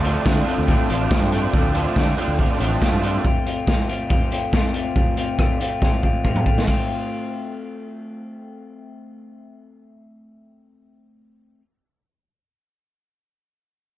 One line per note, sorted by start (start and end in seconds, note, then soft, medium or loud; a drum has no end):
0.00 0.15 D2 loud
0.00 0.24 A3 medium
0.04 0.26 D3 medium
0.04 0.26 F3 medium
0.04 0.27 A3 medium
0.04 0.25 C4 medium
0.04 0.28 D4 medium
0.04 0.25 F4 medium
0.04 closed hi-hat medium
0.24 0.42 D3 medium
0.24 0.47 D3 medium
0.24 0.47 F3 medium
0.24 0.45 A3 medium
0.24 0.48 A3 medium
0.24 0.46 C4 loud
0.24 0.46 F4 medium
0.24 kick loud
0.24 snare loud
0.28 0.49 D4 loud
0.46 0.67 D3 medium
0.46 0.69 F3 medium
0.46 0.66 A3 medium
0.46 0.69 A3 medium
0.46 0.67 C4 medium
0.46 0.69 D4 medium
0.46 0.67 F4 medium
0.46 closed hi-hat medium
0.58 0.74 D2 medium
0.67 0.88 D3 medium
0.67 0.90 F3 medium
0.67 0.88 A3 medium
0.67 0.91 A3 loud
0.67 0.89 C4 medium
0.67 0.90 D4 medium
0.67 0.90 F4 loud
0.67 kick loud
0.89 1.06 A1 medium
0.89 1.10 D3 medium
0.89 1.11 F3 medium
0.89 1.09 A3 medium
0.89 1.12 A3 medium
0.89 1.10 C4 medium
0.89 1.12 D4 medium
0.89 1.11 F4 medium
0.89 closed hi-hat medium
1.10 1.32 D3 medium
1.10 1.33 F3 medium
1.10 1.31 A3 medium
1.10 1.34 A3 medium
1.10 1.32 C4 medium
1.10 1.33 D4 medium
1.10 1.32 F4 loud
1.10 kick loud
1.10 snare loud
1.22 1.46 G2 medium
1.32 1.52 D3 medium
1.32 1.53 F3 medium
1.32 1.53 A3 medium
1.32 1.54 A3 medium
1.32 1.53 C4 medium
1.32 1.54 D4 loud
1.32 1.54 F4 medium
1.32 closed hi-hat medium
1.53 1.86 D2 medium
1.53 1.74 D3 medium
1.53 1.74 F3 medium
1.53 1.74 A3 medium
1.53 1.75 A3 medium
1.53 1.75 C4 medium
1.53 1.76 D4 medium
1.53 1.75 F4 medium
1.53 kick loud
1.75 1.95 D3 medium
1.75 1.96 F3 medium
1.75 1.95 A3 medium
1.75 1.97 A3 medium
1.75 1.96 C4 medium
1.75 1.97 D4 medium
1.75 1.96 F4 medium
1.75 closed hi-hat medium
1.96 2.12 D3 medium
1.96 2.16 D3 medium
1.96 2.17 F3 medium
1.96 2.17 A3 medium
1.96 2.18 C4 medium
1.96 2.18 D4 medium
1.96 2.18 F4 medium
1.96 kick loud
1.96 snare loud
2.17 2.37 D3 medium
2.17 2.38 F3 medium
2.17 2.38 A3 medium
2.17 2.39 C4 medium
2.17 2.39 D4 medium
2.17 2.39 F4 medium
2.17 closed hi-hat medium
2.28 2.44 D2 medium
2.38 2.59 D3 medium
2.38 2.59 F3 medium
2.38 2.59 A3 loud
2.38 2.60 A3 medium
2.38 2.60 C4 medium
2.38 2.60 D4 medium
2.38 2.60 F4 loud
2.38 kick medium
2.59 2.76 A1 medium
2.59 2.80 D3 medium
2.59 2.81 F3 medium
2.59 2.80 A3 medium
2.59 2.81 A3 medium
2.59 2.81 C4 medium
2.59 2.82 D4 medium
2.59 2.82 F4 medium
2.59 closed hi-hat medium
2.81 3.02 D3 medium
2.81 3.02 F3 medium
2.81 3.02 A3 medium
2.81 3.03 A3 medium
2.81 3.02 C4 medium
2.81 3.04 D4 medium
2.81 3.03 F4 loud
2.81 kick loud
2.81 snare loud
2.93 3.17 G2 medium
3.03 3.23 D3 medium
3.03 3.23 F3 medium
3.03 3.24 A3 medium
3.03 3.24 C4 medium
3.03 3.24 D4 medium
3.03 3.25 F4 medium
3.03 closed hi-hat medium
3.24 3.45 A3 medium
3.24 3.46 C4 medium
3.24 3.46 F4 medium
3.24 kick loud
3.45 3.66 A3 medium
3.45 3.66 C4 medium
3.45 3.67 F4 medium
3.45 closed hi-hat medium
3.66 3.88 A3 medium
3.66 3.88 C4 medium
3.66 3.89 F4 loud
3.66 kick loud
3.66 snare loud
3.88 4.08 A3 medium
3.88 4.09 C4 medium
3.88 4.09 F4 medium
3.88 closed hi-hat medium
4.09 4.30 A3 medium
4.09 4.31 C4 medium
4.09 4.31 F4 loud
4.09 kick loud
4.31 4.52 A3 medium
4.31 4.53 C4 medium
4.31 4.53 F4 medium
4.31 closed hi-hat medium
4.53 4.73 A3 medium
4.53 4.74 C4 medium
4.53 4.75 F4 medium
4.53 kick loud
4.53 snare loud
4.74 4.94 A3 medium
4.74 4.95 C4 medium
4.74 4.96 F4 medium
4.74 closed hi-hat medium
4.95 5.15 A3 medium
4.95 5.16 C4 medium
4.95 5.17 F4 medium
4.95 kick medium
5.16 5.37 A3 medium
5.16 5.38 C4 medium
5.16 5.38 F4 medium
5.16 closed hi-hat medium
5.38 5.59 A3 medium
5.38 5.59 C4 medium
5.38 5.60 F4 medium
5.38 kick medium
5.38 cross-stick loud
5.60 5.79 A3 medium
5.60 5.80 C4 medium
5.60 5.81 F4 medium
5.60 closed hi-hat medium
5.81 6.01 A3 medium
5.81 6.02 C4 medium
5.81 6.02 F4 medium
5.81 kick loud
5.81 snare soft
6.02 6.23 A3 medium
6.02 6.23 C4 medium
6.02 6.23 F4 medium
6.02 kick medium
6.24 6.44 A3 medium
6.24 6.45 C4 medium
6.24 6.45 F4 loud
6.24 kick medium
6.36 mid tom medium
6.45 6.64 A3 medium
6.45 6.66 C4 medium
6.45 6.66 F4 medium
6.45 kick medium
6.58 snare medium
6.65 11.60 A3 medium
6.65 11.61 C4 medium
6.65 kick medium
6.65 ride medium
6.69 11.62 F4 medium